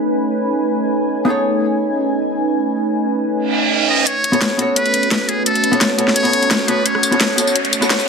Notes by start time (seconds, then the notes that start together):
Already playing: A3 B3 C#4 D#4 G#4 A4 B4 C#5 G#5
1.25 B3 D#4 G#4 A4
1.30 C#5
3.37 reverse cymbal
3.89 D#5
4.06 A3 C#4 F#4 B4 C#5, closed hi-hat, riser
4.24 closed hi-hat
4.32 B3 F#4 A4 C#5, closed hi-hat
4.42 snare, closed hi-hat
4.56 B3 F#4 A4, closed hi-hat
4.62 C#5
4.76 B4, closed hi-hat
4.86 closed hi-hat
4.94 closed hi-hat
5.03 closed hi-hat
5.11 snare, closed hi-hat
5.29 G#4, closed hi-hat
5.46 A4, closed hi-hat
5.55 closed hi-hat
5.64 closed hi-hat
5.71 B3 F#4 A4 C#5, closed hi-hat
5.81 snare, closed hi-hat
5.97 B3 F#4 A4 C#5, closed hi-hat
6.08 snare
6.16 C#5, closed hi-hat
6.22 B3 F#4 A4, closed hi-hat
6.28 C#5
6.33 closed hi-hat
6.43 closed hi-hat
6.51 snare, closed hi-hat
6.67 B3 F#4 A4 B4 C#5, closed hi-hat
6.86 C#5, closed hi-hat
6.95 cross-stick
7.03 closed hi-hat, tambourine
7.11 B3 F#4 A4 C#5, closed hi-hat
7.21 snare, closed hi-hat
7.36 B3 F#4 A4, closed hi-hat, tambourine
7.41 C#5
7.47 tambourine
7.56 closed hi-hat
7.65 closed hi-hat
7.73 closed hi-hat, tambourine
7.81 B3 F#4 A4 C#5, cross-stick, closed hi-hat, tambourine
7.90 snare, closed hi-hat
7.99 cross-stick, tambourine